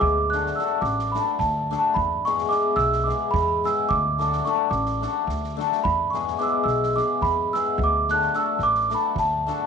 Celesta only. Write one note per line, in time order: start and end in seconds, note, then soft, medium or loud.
0.00 0.31 D6 medium
0.30 0.57 F#6 medium
0.56 0.83 E6 medium
0.81 1.14 D6 medium
1.12 1.37 B5 medium
1.39 1.58 A5 medium
1.59 1.77 A5 soft
1.79 1.97 A5 medium
1.94 2.25 B5 medium
2.25 2.52 C#6 medium
2.49 2.77 D6 medium
2.76 3.05 E6 medium
3.04 3.30 D6 medium
3.31 3.40 B5 medium
3.42 3.47 B5 medium
3.48 3.65 B5 medium
3.65 3.92 E6 medium
3.89 4.18 D6 medium
4.20 4.46 D6 medium
4.45 4.71 C#6 medium
4.70 5.54 D6 medium
5.84 6.11 B5 medium
6.10 6.38 C#6 medium
6.39 6.45 D6 medium
6.43 6.50 E6 medium
6.49 6.64 D6 medium
6.64 6.84 E6 medium
6.85 6.94 E6 medium
6.96 7.22 D6 medium
7.22 7.53 B5 medium
7.53 7.77 E6 medium
7.84 8.08 D6 medium
8.11 8.35 F#6 medium
8.36 8.61 E6 medium
8.63 8.92 D6 medium
8.94 9.19 B5 medium
9.19 9.67 A5 medium